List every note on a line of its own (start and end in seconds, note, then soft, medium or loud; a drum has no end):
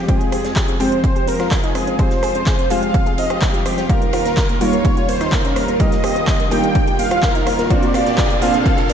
0.00 3.85 F2 medium
0.00 3.85 F3 medium
0.00 3.86 G#3 medium
0.08 0.77 G#3 medium
0.08 0.77 C4 medium
0.08 7.66 F4 medium
0.08 0.77 F4 medium
0.08 0.17 G4 loud
0.08 0.81 G#4 loud
0.08 0.76 G#4 loud
0.08 0.77 C5 medium
0.08 0.77 G5 medium
0.08 kick loud
0.08 closed hi-hat medium
0.08 ride loud
0.21 0.28 C4 medium
0.21 closed hi-hat soft
0.32 0.40 G4 medium
0.32 cross-stick medium
0.32 open hi-hat loud
0.32 ride medium
0.44 0.52 C4 medium
0.44 snare medium
0.44 closed hi-hat soft
0.56 0.64 G4 medium
0.56 kick loud
0.56 snare loud
0.56 clap loud
0.56 closed hi-hat medium
0.56 ride medium
0.68 0.76 C4 medium
0.68 closed hi-hat soft
0.80 1.96 G#3 medium
0.80 1.96 C4 medium
0.80 1.96 F4 medium
0.80 0.88 G4 medium
0.80 1.03 C5 loud
0.80 1.02 C5 medium
0.80 1.96 C5 medium
0.80 1.96 G5 medium
0.80 open hi-hat loud
0.80 ride medium
0.92 1.00 C4 medium
0.92 closed hi-hat soft
1.04 1.12 C4 medium
1.04 1.29 C5 loud
1.04 1.26 C5 loud
1.04 kick loud
1.04 closed hi-hat medium
1.04 ride medium
1.16 1.24 G4 medium
1.16 closed hi-hat soft
1.27 1.36 C4 medium
1.27 1.50 A#4 medium
1.27 1.53 A#4 medium
1.27 open hi-hat loud
1.27 ride medium
1.40 1.47 F4 medium
1.40 cross-stick medium
1.40 snare soft
1.40 closed hi-hat soft
1.51 1.59 C4 medium
1.51 1.96 G#4 loud
1.51 2.01 G#4 loud
1.51 kick loud
1.51 snare loud
1.51 clap loud
1.51 closed hi-hat medium
1.51 ride medium
1.63 1.71 D#4 medium
1.63 closed hi-hat soft
1.75 1.83 C4 medium
1.75 cross-stick medium
1.75 open hi-hat loud
1.75 ride medium
1.87 1.95 C4 medium
1.87 closed hi-hat soft
1.99 2.68 G#3 medium
1.99 2.68 C4 medium
1.99 2.68 F4 medium
1.99 2.68 G4 medium
1.99 2.07 G#4 loud
1.99 2.66 C5 loud
1.99 2.68 C5 medium
1.99 2.70 C5 loud
1.99 kick loud
1.99 closed hi-hat medium
1.99 ride medium
2.11 2.19 C4 medium
2.11 snare soft
2.11 closed hi-hat soft
2.23 2.31 G#4 medium
2.23 cross-stick medium
2.23 open hi-hat loud
2.23 ride medium
2.35 2.43 C4 medium
2.35 closed hi-hat soft
2.46 2.55 G#4 medium
2.46 kick loud
2.46 snare loud
2.46 clap loud
2.46 closed hi-hat medium
2.46 ride medium
2.59 2.67 C4 medium
2.59 closed hi-hat soft
2.70 3.87 G#3 medium
2.70 3.87 C4 medium
2.70 3.87 F4 medium
2.70 3.87 G4 medium
2.70 2.79 G#4 medium
2.70 3.87 C5 medium
2.70 2.93 F5 loud
2.70 open hi-hat loud
2.70 ride medium
2.83 2.90 C4 medium
2.83 closed hi-hat soft
2.94 3.02 C4 medium
2.94 3.16 F5 loud
2.94 3.20 F5 loud
2.94 kick loud
2.94 closed hi-hat medium
2.94 ride medium
3.06 3.14 G#4 medium
3.06 closed hi-hat soft
3.06 ride soft
3.18 3.26 C4 medium
3.18 3.40 D#5 loud
3.18 3.43 D#5 loud
3.18 open hi-hat loud
3.18 ride medium
3.30 3.38 G4 medium
3.30 cross-stick medium
3.30 closed hi-hat soft
3.41 3.50 C4 medium
3.41 3.86 G4 loud
3.41 3.91 G4 loud
3.41 kick loud
3.41 snare loud
3.41 clap loud
3.41 closed hi-hat medium
3.41 ride medium
3.54 3.62 F4 medium
3.54 closed hi-hat soft
3.66 3.74 C4 medium
3.66 cross-stick medium
3.66 open hi-hat loud
3.66 ride medium
3.78 3.86 C4 medium
3.78 snare soft
3.78 closed hi-hat soft
3.89 7.67 D#2 medium
3.89 7.67 D#3 medium
3.89 4.58 G3 medium
3.89 7.67 G3 medium
3.89 4.58 A#3 medium
3.89 4.58 D#4 medium
3.89 4.58 F4 medium
3.89 3.98 F4 loud
3.89 4.57 A#4 loud
3.89 4.62 A#4 loud
3.89 4.58 A#4 medium
3.89 kick loud
3.89 closed hi-hat medium
3.89 ride medium
3.89 riser medium
4.02 4.09 A#3 medium
4.02 closed hi-hat soft
4.13 4.21 F4 medium
4.13 cross-stick medium
4.13 open hi-hat loud
4.13 ride medium
4.25 4.33 A#3 medium
4.25 snare medium
4.25 closed hi-hat soft
4.37 4.45 F4 medium
4.37 kick loud
4.37 snare loud
4.37 clap loud
4.37 closed hi-hat medium
4.37 ride medium
4.49 4.57 A#3 medium
4.49 closed hi-hat soft
4.61 5.77 G3 medium
4.61 5.77 A#3 medium
4.61 5.77 D#4 medium
4.61 5.77 F4 medium
4.61 4.69 F4 medium
4.61 5.77 A#4 medium
4.61 4.83 C#5 loud
4.61 4.84 C#5 loud
4.61 open hi-hat loud
4.61 ride medium
4.73 4.81 A#3 medium
4.73 closed hi-hat soft
4.85 4.93 A#3 medium
4.85 5.10 C#5 loud
4.85 5.07 C#5 loud
4.85 kick loud
4.85 closed hi-hat medium
4.85 ride medium
4.97 5.05 F4 medium
4.97 closed hi-hat soft
5.08 5.17 A#3 medium
5.08 5.32 C5 loud
5.08 5.31 C5 loud
5.08 open hi-hat loud
5.08 ride medium
5.21 5.28 D#4 medium
5.21 cross-stick medium
5.21 snare soft
5.21 closed hi-hat soft
5.32 5.40 A#3 medium
5.32 5.81 A#4 loud
5.32 5.77 A#4 loud
5.32 kick loud
5.32 snare loud
5.32 clap loud
5.32 closed hi-hat medium
5.32 ride medium
5.45 5.52 C#4 medium
5.45 closed hi-hat soft
5.56 5.64 A#3 medium
5.56 cross-stick medium
5.56 open hi-hat loud
5.56 ride medium
5.68 5.76 A#3 medium
5.68 closed hi-hat soft
5.80 6.49 G3 medium
5.80 6.49 A#3 medium
5.80 6.49 D#4 medium
5.80 6.49 F4 medium
5.80 5.88 G4 loud
5.80 6.49 A#4 medium
5.80 6.47 D#5 loud
5.80 6.51 D#5 loud
5.80 kick loud
5.80 closed hi-hat medium
5.80 ride medium
5.92 6.00 A#3 medium
5.92 snare soft
5.92 closed hi-hat soft
6.03 6.12 G4 medium
6.03 cross-stick medium
6.03 open hi-hat loud
6.03 ride medium
6.16 6.24 A#3 medium
6.16 closed hi-hat soft
6.27 6.36 G4 medium
6.27 kick loud
6.27 snare loud
6.27 clap loud
6.27 closed hi-hat medium
6.27 ride medium
6.40 6.48 A#3 medium
6.40 closed hi-hat soft
6.51 7.68 G3 medium
6.51 7.68 A#3 medium
6.51 7.68 D#4 medium
6.51 7.68 F4 medium
6.51 6.59 G4 medium
6.51 7.68 A#4 loud
6.51 6.73 G5 loud
6.51 6.74 G5 loud
6.51 open hi-hat loud
6.51 ride medium
6.64 6.71 A#3 medium
6.64 closed hi-hat soft
6.75 6.97 G5 loud
6.75 kick loud
6.75 closed hi-hat medium
6.75 ride medium
6.87 6.95 G4 medium
6.87 closed hi-hat soft
6.87 ride soft
6.99 7.07 A#3 medium
6.99 7.21 F5 loud
6.99 7.24 F5 loud
6.99 open hi-hat loud
6.99 ride medium
7.11 7.19 F4 medium
7.11 cross-stick medium
7.11 closed hi-hat soft
7.22 7.31 A#3 medium
7.22 7.67 A#4 loud
7.22 7.72 A#4 loud
7.22 kick loud
7.22 snare loud
7.22 clap loud
7.22 closed hi-hat medium
7.22 ride medium
7.35 7.43 D#4 medium
7.35 closed hi-hat soft
7.47 7.55 A#3 medium
7.47 cross-stick medium
7.47 open hi-hat loud
7.47 ride medium
7.59 7.67 A#3 medium
7.59 snare soft
7.59 closed hi-hat soft
7.70 8.93 A#2 medium
7.70 8.93 F3 medium
7.70 8.39 A#3 medium
7.70 8.39 C4 medium
7.70 8.93 C4 medium
7.70 8.39 D4 medium
7.70 8.93 D4 medium
7.70 8.39 F4 medium
7.70 7.79 F4 loud
7.70 8.39 C5 medium
7.70 8.38 D5 loud
7.70 8.41 D5 loud
7.70 kick loud
7.70 closed hi-hat medium
7.70 ride medium
7.83 7.90 A#3 medium
7.83 closed hi-hat soft
7.94 8.02 F4 medium
7.94 cross-stick medium
7.94 open hi-hat loud
7.94 ride medium
8.06 8.14 A#3 medium
8.06 snare medium
8.06 closed hi-hat soft
8.18 8.26 F4 medium
8.18 kick loud
8.18 snare loud
8.18 clap loud
8.18 closed hi-hat medium
8.18 ride medium
8.30 8.38 A#3 medium
8.30 closed hi-hat soft
8.41 8.93 A#3 medium
8.41 8.93 C4 medium
8.41 8.93 D4 medium
8.41 8.93 F4 medium
8.41 8.50 F4 medium
8.41 8.93 C5 loud
8.41 8.64 F5 loud
8.41 open hi-hat loud
8.41 ride medium
8.54 8.62 A#3 medium
8.54 closed hi-hat soft
8.66 8.74 A#3 medium
8.66 8.88 F5 loud
8.66 kick loud
8.66 closed hi-hat medium
8.66 ride medium
8.78 8.86 F4 medium
8.78 closed hi-hat soft
8.89 8.93 A#3 medium
8.89 8.93 D5 loud
8.89 open hi-hat loud
8.89 ride medium